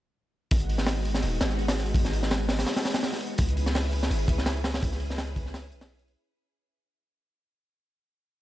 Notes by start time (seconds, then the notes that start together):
0.51 G#1 G#3 B3 D#4 F#4, kick, open hi-hat
0.60 closed hi-hat
0.69 open hi-hat
0.78 snare
0.87 snare, open hi-hat
1.05 G#3 B3 D#4 F#4, open hi-hat
1.14 snare
1.22 D#1, open hi-hat
1.41 G#1, snare, open hi-hat
1.50 snare
1.59 open hi-hat
1.68 snare, open hi-hat
1.78 snare
1.86 open hi-hat
1.94 G#1 G#3 B3 D#4 F#4, kick, open hi-hat
2.05 snare
2.13 open hi-hat
2.23 snare
2.31 snare, open hi-hat
2.49 G#3 B3 D#4 F#4, snare, open hi-hat
2.59 snare, open hi-hat
2.66 snare, open hi-hat
2.76 snare, open hi-hat
2.85 snare, open hi-hat
2.94 snare, open hi-hat
3.03 snare, open hi-hat
3.13 snare
3.21 open hi-hat
3.38 C#2 C#4 E4 G#4 B4, kick, open hi-hat
3.48 closed hi-hat
3.57 open hi-hat
3.66 snare
3.75 snare, open hi-hat
3.92 C#4 E4 G#4 B4, open hi-hat
4.03 snare
4.11 G#1, open hi-hat
4.28 C#2, kick, open hi-hat
4.38 snare
4.46 snare, open hi-hat
4.56 snare
4.64 snare, open hi-hat
4.74 snare, open hi-hat
4.82 C#2 C#4 E4 G#4 B4, kick, open hi-hat
4.92 snare
5.00 open hi-hat
5.10 snare
5.18 snare, open hi-hat
5.36 C#4 E4 G#4 B4, kick, open hi-hat
5.46 snare
5.54 snare, open hi-hat
5.72 B1, open hi-hat
5.81 C#4 E4 G#4 B4, snare, open hi-hat
5.99 open hi-hat
6.08 C#4 E4 G#4 B4, open hi-hat